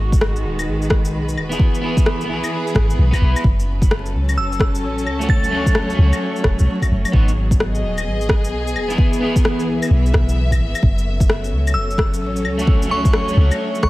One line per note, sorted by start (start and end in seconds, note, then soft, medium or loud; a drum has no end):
0.00 0.45 G#1 loud
0.00 1.60 D#3 medium
0.00 1.60 G#3 medium
0.00 2.35 F#4 medium
0.12 kick loud
0.12 shaker medium
0.21 cross-stick loud
0.36 4.95 B4 medium
0.36 shaker soft
0.44 0.69 D#1 medium
0.59 claves soft
0.59 shaker medium
0.67 1.15 G#1 loud
0.82 shaker soft
0.90 kick loud
0.90 cross-stick loud
1.05 shaker medium
1.14 1.38 B1 medium
1.29 shaker soft
1.37 2.30 E1 medium
1.37 claves soft
1.49 1.80 B3 medium
1.49 1.81 E4 medium
1.49 1.82 G#4 medium
1.49 shaker medium
1.59 3.44 E3 medium
1.59 kick loud
1.70 4.14 B3 medium
1.75 shaker soft
1.81 2.24 B3 medium
1.81 2.27 E4 medium
1.86 2.28 G#4 medium
1.97 kick loud
1.97 shaker medium
2.06 cross-stick loud
2.13 3.44 G#4 medium
2.21 shaker soft
2.25 2.42 B1 medium
2.25 3.08 B3 medium
2.29 3.10 E4 medium
2.29 3.12 G#4 medium
2.44 claves soft
2.44 shaker medium
2.67 shaker soft
2.75 2.97 G#1 medium
2.75 kick loud
2.75 cross-stick loud
2.90 shaker medium
2.98 3.12 B1 medium
3.11 3.43 B3 medium
3.11 3.44 E4 medium
3.11 3.45 B4 loud
3.11 kick medium
3.11 claves soft
3.11 shaker soft
3.21 3.35 B1 medium
3.36 claves medium
3.36 shaker medium
3.44 4.16 F#1 loud
3.44 8.98 F#3 medium
3.44 kick loud
3.60 7.86 C#4 medium
3.60 shaker soft
3.82 kick loud
3.82 shaker medium
3.91 7.14 A4 medium
3.91 cross-stick loud
4.06 shaker soft
4.14 4.39 C#2 medium
4.21 7.88 C#5 medium
4.29 claves soft
4.29 shaker medium
4.37 4.85 F#1 loud
4.37 4.62 E6 medium
4.52 shaker soft
4.60 kick medium
4.60 cross-stick loud
4.75 shaker soft
4.83 5.08 A1 medium
4.98 shaker soft
5.06 5.97 C#2 medium
5.06 claves soft
5.19 5.49 A3 medium
5.19 5.50 C#4 medium
5.19 5.51 F#4 medium
5.19 shaker soft
5.29 5.76 A6 medium
5.29 kick loud
5.44 shaker soft
5.50 5.93 A3 medium
5.50 5.96 C#4 medium
5.55 5.98 F#4 medium
5.66 kick medium
5.66 shaker medium
5.75 cross-stick loud
5.90 shaker soft
5.94 7.11 A3 medium
5.98 6.12 C#2 medium
5.98 7.13 C#4 medium
6.02 7.15 F#4 medium
6.13 claves soft
6.13 shaker soft
6.36 shaker soft
6.44 6.58 E1 medium
6.44 kick medium
6.44 cross-stick loud
6.59 6.67 B1 medium
6.59 shaker soft
6.82 kick medium
6.82 claves soft
6.82 shaker soft
6.91 7.04 F#1 loud
7.05 claves medium
7.05 shaker soft
7.12 7.85 G#1 loud
7.12 7.29 B3 medium
7.12 7.30 D#4 medium
7.12 kick loud
7.16 7.31 F#4 medium
7.28 10.83 G#4 medium
7.28 shaker soft
7.38 12.33 B3 medium
7.51 kick loud
7.51 shaker medium
7.60 cross-stick medium
7.66 8.98 D#5 medium
7.75 shaker soft
7.83 8.08 D#1 medium
7.98 claves medium
7.98 shaker medium
8.06 8.53 G#1 medium
8.21 shaker soft
8.29 kick medium
8.29 cross-stick loud
8.44 shaker soft
8.52 8.77 B1 medium
8.67 shaker soft
8.75 9.69 E1 medium
8.75 claves medium
8.88 9.19 B3 medium
8.88 9.20 E4 medium
8.88 9.21 G#4 medium
8.88 shaker soft
8.98 10.83 E3 medium
8.98 kick loud
9.13 shaker soft
9.20 9.65 B3 medium
9.20 9.66 E4 medium
9.20 9.67 G#4 medium
9.36 kick loud
9.36 shaker medium
9.45 cross-stick loud
9.60 shaker soft
9.68 9.81 B1 medium
9.68 12.33 E5 medium
9.82 claves medium
9.82 shaker medium
9.90 10.12 B1 medium
10.06 shaker soft
10.14 10.61 B1 medium
10.14 kick medium
10.14 cross-stick loud
10.29 shaker medium
10.51 kick medium
10.51 claves soft
10.51 shaker soft
10.60 10.73 G#1 medium
10.75 claves medium
10.75 shaker medium
10.83 11.53 F#1 loud
10.83 13.90 F#3 medium
10.83 kick loud
10.98 13.90 A4 medium
10.98 shaker soft
11.07 13.90 C#4 medium
11.20 kick loud
11.20 shaker medium
11.30 cross-stick loud
11.42 13.90 C#5 medium
11.42 shaker soft
11.52 11.77 C#2 medium
11.67 claves medium
11.67 shaker medium
11.74 12.23 F#1 loud
11.74 11.99 E6 medium
11.91 shaker soft
11.98 kick loud
11.98 cross-stick loud
12.14 shaker medium
12.21 12.46 A1 medium
12.36 shaker soft
12.45 13.36 C#2 medium
12.45 claves medium
12.58 12.88 A3 medium
12.58 12.89 C#4 medium
12.58 12.90 F#4 medium
12.58 shaker medium
12.67 kick loud
12.82 shaker soft
12.89 13.32 A3 medium
12.89 13.35 C#4 medium
12.89 13.36 F#4 loud
12.89 13.16 C#6 medium
13.05 kick loud
13.05 shaker medium
13.13 cross-stick loud
13.28 shaker soft
13.33 13.50 C#2 medium
13.33 13.90 A3 medium
13.37 13.90 C#4 medium
13.37 13.90 F#4 medium
13.51 claves medium
13.51 shaker medium
13.75 shaker soft
13.83 13.90 E1 medium
13.83 13.90 C#6 medium
13.83 kick loud
13.83 cross-stick loud